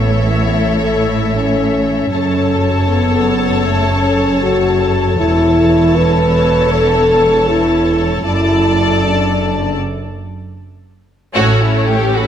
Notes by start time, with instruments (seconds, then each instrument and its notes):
Already playing: double bass section A1, cello section A2, french horn section B3, viola section A4, violin section C#5 E5
0.60 french horn section A3
1.36 french horn section C#4
2.12 double bass section F#1, cello section F#2, french horn section C#4, viola section A4, violin section C#5 A5
2.88 french horn section B3
3.65 french horn section A3
3.90 french horn section C#4
4.42 french horn section F#4
5.18 double bass section E1, cello section E2, french horn section E4, viola section A4, violin section C#5 A5
5.96 french horn section B4
6.72 french horn section A4
7.49 french horn section E4
8.24 double bass section F#1, cello section F#2, french horn section E4, viola section A4, violin section D5 A5
9.03 french horn section D4
11.35 double bass section A1, cello section A2, viola section C#4 A4, violin section F#4 C#5
11.62 violin section E4
11.86 trombone section E3 A3, french horn section C#4 A4, violin section G4
12.14 violin section F#4 B4